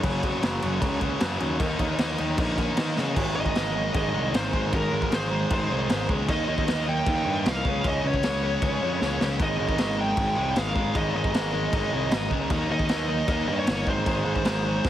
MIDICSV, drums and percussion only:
0, 0, Header, 1, 2, 480
1, 0, Start_track
1, 0, Tempo, 389864
1, 42, Time_signature, 4, 2, 24, 8
1, 18341, End_track
2, 0, Start_track
2, 0, Title_t, "Drums"
2, 41, Note_on_c, 9, 49, 98
2, 43, Note_on_c, 9, 36, 114
2, 164, Note_off_c, 9, 49, 0
2, 166, Note_off_c, 9, 36, 0
2, 284, Note_on_c, 9, 36, 99
2, 285, Note_on_c, 9, 49, 77
2, 407, Note_off_c, 9, 36, 0
2, 408, Note_off_c, 9, 49, 0
2, 526, Note_on_c, 9, 49, 75
2, 535, Note_on_c, 9, 38, 112
2, 649, Note_off_c, 9, 49, 0
2, 658, Note_off_c, 9, 38, 0
2, 768, Note_on_c, 9, 49, 68
2, 891, Note_off_c, 9, 49, 0
2, 1007, Note_on_c, 9, 36, 127
2, 1010, Note_on_c, 9, 49, 94
2, 1130, Note_off_c, 9, 36, 0
2, 1133, Note_off_c, 9, 49, 0
2, 1242, Note_on_c, 9, 49, 57
2, 1246, Note_on_c, 9, 36, 81
2, 1366, Note_off_c, 9, 49, 0
2, 1369, Note_off_c, 9, 36, 0
2, 1483, Note_on_c, 9, 49, 86
2, 1491, Note_on_c, 9, 38, 109
2, 1606, Note_off_c, 9, 49, 0
2, 1614, Note_off_c, 9, 38, 0
2, 1728, Note_on_c, 9, 49, 64
2, 1851, Note_off_c, 9, 49, 0
2, 1968, Note_on_c, 9, 36, 127
2, 1968, Note_on_c, 9, 49, 86
2, 2091, Note_off_c, 9, 36, 0
2, 2091, Note_off_c, 9, 49, 0
2, 2206, Note_on_c, 9, 49, 71
2, 2208, Note_on_c, 9, 36, 99
2, 2329, Note_off_c, 9, 49, 0
2, 2331, Note_off_c, 9, 36, 0
2, 2445, Note_on_c, 9, 49, 83
2, 2453, Note_on_c, 9, 38, 109
2, 2568, Note_off_c, 9, 49, 0
2, 2576, Note_off_c, 9, 38, 0
2, 2686, Note_on_c, 9, 49, 65
2, 2809, Note_off_c, 9, 49, 0
2, 2928, Note_on_c, 9, 49, 97
2, 2930, Note_on_c, 9, 36, 127
2, 3051, Note_off_c, 9, 49, 0
2, 3053, Note_off_c, 9, 36, 0
2, 3173, Note_on_c, 9, 36, 76
2, 3175, Note_on_c, 9, 49, 61
2, 3296, Note_off_c, 9, 36, 0
2, 3298, Note_off_c, 9, 49, 0
2, 3408, Note_on_c, 9, 49, 95
2, 3416, Note_on_c, 9, 38, 118
2, 3531, Note_off_c, 9, 49, 0
2, 3539, Note_off_c, 9, 38, 0
2, 3666, Note_on_c, 9, 38, 74
2, 3789, Note_off_c, 9, 38, 0
2, 3896, Note_on_c, 9, 36, 121
2, 3898, Note_on_c, 9, 49, 73
2, 3898, Note_on_c, 9, 57, 126
2, 4019, Note_off_c, 9, 36, 0
2, 4021, Note_off_c, 9, 49, 0
2, 4021, Note_off_c, 9, 57, 0
2, 4256, Note_on_c, 9, 36, 98
2, 4375, Note_on_c, 9, 49, 62
2, 4379, Note_off_c, 9, 36, 0
2, 4384, Note_on_c, 9, 38, 104
2, 4499, Note_off_c, 9, 49, 0
2, 4507, Note_off_c, 9, 38, 0
2, 4854, Note_on_c, 9, 49, 75
2, 4858, Note_on_c, 9, 36, 119
2, 4977, Note_off_c, 9, 49, 0
2, 4981, Note_off_c, 9, 36, 0
2, 5345, Note_on_c, 9, 49, 67
2, 5354, Note_on_c, 9, 38, 120
2, 5468, Note_off_c, 9, 49, 0
2, 5477, Note_off_c, 9, 38, 0
2, 5581, Note_on_c, 9, 36, 99
2, 5705, Note_off_c, 9, 36, 0
2, 5821, Note_on_c, 9, 49, 68
2, 5822, Note_on_c, 9, 36, 127
2, 5944, Note_off_c, 9, 49, 0
2, 5945, Note_off_c, 9, 36, 0
2, 6181, Note_on_c, 9, 36, 91
2, 6301, Note_on_c, 9, 49, 64
2, 6304, Note_off_c, 9, 36, 0
2, 6310, Note_on_c, 9, 38, 123
2, 6424, Note_off_c, 9, 49, 0
2, 6433, Note_off_c, 9, 38, 0
2, 6777, Note_on_c, 9, 49, 84
2, 6780, Note_on_c, 9, 36, 127
2, 6900, Note_off_c, 9, 49, 0
2, 6903, Note_off_c, 9, 36, 0
2, 7259, Note_on_c, 9, 49, 68
2, 7267, Note_on_c, 9, 38, 126
2, 7382, Note_off_c, 9, 49, 0
2, 7390, Note_off_c, 9, 38, 0
2, 7499, Note_on_c, 9, 36, 98
2, 7622, Note_off_c, 9, 36, 0
2, 7739, Note_on_c, 9, 36, 118
2, 7739, Note_on_c, 9, 49, 73
2, 7862, Note_off_c, 9, 36, 0
2, 7862, Note_off_c, 9, 49, 0
2, 8100, Note_on_c, 9, 36, 93
2, 8219, Note_on_c, 9, 49, 66
2, 8223, Note_off_c, 9, 36, 0
2, 8228, Note_on_c, 9, 38, 111
2, 8342, Note_off_c, 9, 49, 0
2, 8351, Note_off_c, 9, 38, 0
2, 8697, Note_on_c, 9, 49, 73
2, 8698, Note_on_c, 9, 36, 127
2, 8820, Note_off_c, 9, 49, 0
2, 8821, Note_off_c, 9, 36, 0
2, 9181, Note_on_c, 9, 49, 66
2, 9190, Note_on_c, 9, 38, 118
2, 9304, Note_off_c, 9, 49, 0
2, 9313, Note_off_c, 9, 38, 0
2, 9418, Note_on_c, 9, 36, 103
2, 9541, Note_off_c, 9, 36, 0
2, 9658, Note_on_c, 9, 36, 127
2, 9661, Note_on_c, 9, 49, 70
2, 9781, Note_off_c, 9, 36, 0
2, 9784, Note_off_c, 9, 49, 0
2, 10018, Note_on_c, 9, 36, 83
2, 10132, Note_on_c, 9, 49, 63
2, 10141, Note_off_c, 9, 36, 0
2, 10141, Note_on_c, 9, 38, 112
2, 10255, Note_off_c, 9, 49, 0
2, 10264, Note_off_c, 9, 38, 0
2, 10613, Note_on_c, 9, 36, 117
2, 10613, Note_on_c, 9, 49, 72
2, 10736, Note_off_c, 9, 49, 0
2, 10737, Note_off_c, 9, 36, 0
2, 11101, Note_on_c, 9, 38, 66
2, 11224, Note_off_c, 9, 38, 0
2, 11340, Note_on_c, 9, 38, 106
2, 11464, Note_off_c, 9, 38, 0
2, 11568, Note_on_c, 9, 36, 125
2, 11570, Note_on_c, 9, 49, 77
2, 11691, Note_off_c, 9, 36, 0
2, 11694, Note_off_c, 9, 49, 0
2, 11926, Note_on_c, 9, 36, 90
2, 12044, Note_on_c, 9, 49, 74
2, 12049, Note_off_c, 9, 36, 0
2, 12053, Note_on_c, 9, 38, 115
2, 12167, Note_off_c, 9, 49, 0
2, 12176, Note_off_c, 9, 38, 0
2, 12520, Note_on_c, 9, 49, 79
2, 12524, Note_on_c, 9, 36, 121
2, 12644, Note_off_c, 9, 49, 0
2, 12647, Note_off_c, 9, 36, 0
2, 13000, Note_on_c, 9, 49, 65
2, 13009, Note_on_c, 9, 38, 112
2, 13124, Note_off_c, 9, 49, 0
2, 13132, Note_off_c, 9, 38, 0
2, 13243, Note_on_c, 9, 36, 104
2, 13366, Note_off_c, 9, 36, 0
2, 13481, Note_on_c, 9, 49, 73
2, 13483, Note_on_c, 9, 36, 123
2, 13604, Note_off_c, 9, 49, 0
2, 13606, Note_off_c, 9, 36, 0
2, 13842, Note_on_c, 9, 36, 97
2, 13965, Note_off_c, 9, 36, 0
2, 13965, Note_on_c, 9, 49, 67
2, 13973, Note_on_c, 9, 38, 117
2, 14088, Note_off_c, 9, 49, 0
2, 14096, Note_off_c, 9, 38, 0
2, 14440, Note_on_c, 9, 36, 124
2, 14440, Note_on_c, 9, 49, 76
2, 14563, Note_off_c, 9, 36, 0
2, 14563, Note_off_c, 9, 49, 0
2, 14915, Note_on_c, 9, 49, 66
2, 14923, Note_on_c, 9, 38, 127
2, 15038, Note_off_c, 9, 49, 0
2, 15046, Note_off_c, 9, 38, 0
2, 15156, Note_on_c, 9, 36, 91
2, 15279, Note_off_c, 9, 36, 0
2, 15390, Note_on_c, 9, 49, 76
2, 15393, Note_on_c, 9, 36, 127
2, 15513, Note_off_c, 9, 49, 0
2, 15516, Note_off_c, 9, 36, 0
2, 15752, Note_on_c, 9, 36, 97
2, 15868, Note_on_c, 9, 49, 68
2, 15875, Note_off_c, 9, 36, 0
2, 15877, Note_on_c, 9, 38, 111
2, 15991, Note_off_c, 9, 49, 0
2, 16000, Note_off_c, 9, 38, 0
2, 16348, Note_on_c, 9, 49, 74
2, 16350, Note_on_c, 9, 36, 127
2, 16471, Note_off_c, 9, 49, 0
2, 16473, Note_off_c, 9, 36, 0
2, 16829, Note_on_c, 9, 49, 67
2, 16838, Note_on_c, 9, 38, 123
2, 16952, Note_off_c, 9, 49, 0
2, 16961, Note_off_c, 9, 38, 0
2, 17074, Note_on_c, 9, 36, 100
2, 17197, Note_off_c, 9, 36, 0
2, 17314, Note_on_c, 9, 36, 114
2, 17314, Note_on_c, 9, 49, 73
2, 17437, Note_off_c, 9, 36, 0
2, 17438, Note_off_c, 9, 49, 0
2, 17674, Note_on_c, 9, 36, 87
2, 17792, Note_on_c, 9, 49, 60
2, 17798, Note_off_c, 9, 36, 0
2, 17800, Note_on_c, 9, 38, 113
2, 17915, Note_off_c, 9, 49, 0
2, 17924, Note_off_c, 9, 38, 0
2, 18279, Note_on_c, 9, 36, 123
2, 18284, Note_on_c, 9, 38, 77
2, 18341, Note_off_c, 9, 36, 0
2, 18341, Note_off_c, 9, 38, 0
2, 18341, End_track
0, 0, End_of_file